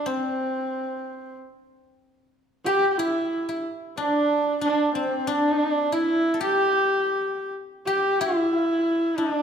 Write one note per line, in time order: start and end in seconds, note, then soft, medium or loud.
0.00 2.20 D4 medium
0.00 1.84 E4 medium
0.00 0.85 G4 medium
0.06 3.06 C4 medium
0.06 1.36 C4 medium
2.65 2.91 G4 loud
2.65 5.01 G4 medium
2.91 2.99 G4 medium
2.98 3.63 E4 medium
2.98 3.48 E4 medium
3.49 5.92 E4 medium
3.97 4.58 D4 medium
3.97 4.61 D4 medium
4.61 5.27 D4 medium
4.61 4.93 D4 medium
4.94 5.29 C4 medium
4.94 7.95 C4 medium
5.27 8.07 D4 medium
5.27 5.95 D4 loud
5.92 8.20 E4 medium
5.92 6.42 E4 loud
6.34 8.53 A4 medium
6.41 7.87 G4 medium
6.41 7.52 G4 loud
7.87 8.22 G4 medium
7.87 9.42 G4 medium
8.20 9.19 E4 medium
8.20 9.42 E4 medium
9.17 9.42 D4 loud
9.17 9.42 D4 medium